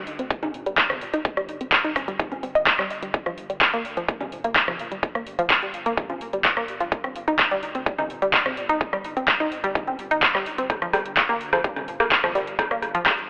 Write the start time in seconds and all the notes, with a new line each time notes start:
Already playing: D2
0.07 open hi-hat
0.19 C4, closed hi-hat
0.30 G1, kick, closed hi-hat
0.43 D#4, closed hi-hat, mid tom, high conga
0.54 open hi-hat
0.66 G1 G3, closed hi-hat
0.78 kick, clap, closed hi-hat
0.90 G1 C4, cross-stick, closed hi-hat, mid tom
1.01 open hi-hat
1.14 D#4, closed hi-hat
1.25 G1, kick, closed hi-hat
1.37 G3, cross-stick, closed hi-hat
1.49 open hi-hat
1.61 D1 C4, closed hi-hat
1.72 kick, clap, closed hi-hat
1.84 G1 D#4, closed hi-hat
1.96 kick, cross-stick, open hi-hat, high conga
2.08 G3, closed hi-hat
2.19 G1, kick, closed hi-hat, mid tom
2.32 C4, closed hi-hat, high conga
2.43 C4, open hi-hat
2.55 G1 D#5, closed hi-hat
2.67 kick, clap, closed hi-hat
2.79 G1 G3, cross-stick, clap, closed hi-hat
2.90 open hi-hat
3.02 G3, closed hi-hat
3.14 G1, kick, closed hi-hat
3.26 F3, cross-stick, closed hi-hat
3.38 open hi-hat
3.50 G1 G3, closed hi-hat
3.61 kick, clap, closed hi-hat
3.73 D2 A#3, closed hi-hat
3.85 open hi-hat
3.97 F3, closed hi-hat
4.08 G1, kick, closed hi-hat
4.21 G3, closed hi-hat, mid tom, high conga
4.32 open hi-hat
4.44 G1 A#3, closed hi-hat
4.56 kick, clap, closed hi-hat
4.68 G1 F3, cross-stick, closed hi-hat, mid tom
4.79 open hi-hat
4.92 G3, closed hi-hat
5.03 G1, kick, closed hi-hat
5.15 A#3, cross-stick, closed hi-hat
5.27 open hi-hat
5.39 D1 F3, closed hi-hat
5.50 kick, clap, closed hi-hat
5.62 G1 G3, closed hi-hat
5.74 open hi-hat
5.86 A#3, closed hi-hat
5.97 G1, kick, closed hi-hat, mid tom
6.10 F3, closed hi-hat, high conga
6.21 open hi-hat
6.33 G1 G3, closed hi-hat
6.45 kick, clap, closed hi-hat
6.57 G1 A#3, cross-stick, closed hi-hat
6.68 open hi-hat
6.80 F3, closed hi-hat
6.92 G1, kick, closed hi-hat
7.04 C4, cross-stick, closed hi-hat
7.16 open hi-hat
7.28 G1 D#4, closed hi-hat
7.39 kick, clap, closed hi-hat
7.51 D2 G3, closed hi-hat
7.63 open hi-hat
7.75 C4, closed hi-hat
7.86 G1, kick, closed hi-hat
7.98 D#4, closed hi-hat, mid tom, high conga
8.10 open hi-hat
8.22 G1 G3, closed hi-hat
8.34 kick, clap, closed hi-hat
8.46 G1 C4, cross-stick, closed hi-hat, mid tom
8.57 open hi-hat
8.69 D#4, closed hi-hat
8.81 G1, kick, closed hi-hat
8.93 G3, cross-stick, closed hi-hat
9.04 open hi-hat
9.17 D1 C4, closed hi-hat
9.28 kick, clap, closed hi-hat
9.40 G1 D#4, closed hi-hat
9.52 open hi-hat
9.64 G3, closed hi-hat
9.75 G1, kick, closed hi-hat, mid tom
9.87 C4, closed hi-hat, high conga
9.99 open hi-hat
10.11 G1 D#4, closed hi-hat
10.23 kick, clap, closed hi-hat
10.35 G1 G3, cross-stick, clap, closed hi-hat
10.46 open hi-hat
10.58 C4, closed hi-hat
10.70 G1, kick, cross-stick, closed hi-hat
10.82 F3, cross-stick, closed hi-hat
10.93 G3, cross-stick, open hi-hat
11.06 G1, closed hi-hat
11.17 kick, cross-stick, clap, closed hi-hat
11.29 D2 A#3, closed hi-hat
11.41 open hi-hat
11.53 F3, cross-stick, closed hi-hat
11.64 G1 G3, kick, closed hi-hat
11.76 cross-stick, closed hi-hat, mid tom, high conga
11.88 open hi-hat
12.00 G1 A#3, cross-stick, closed hi-hat
12.12 kick, clap, closed hi-hat
12.24 G1 F3, cross-stick, closed hi-hat, mid tom
12.35 G3, open hi-hat
12.47 closed hi-hat
12.59 G1, kick, cross-stick, closed hi-hat
12.71 A#3, cross-stick, closed hi-hat
12.82 cross-stick, open hi-hat
12.95 D1 F3, closed hi-hat
13.06 G3, kick, cross-stick, clap, closed hi-hat
13.18 G1, closed hi-hat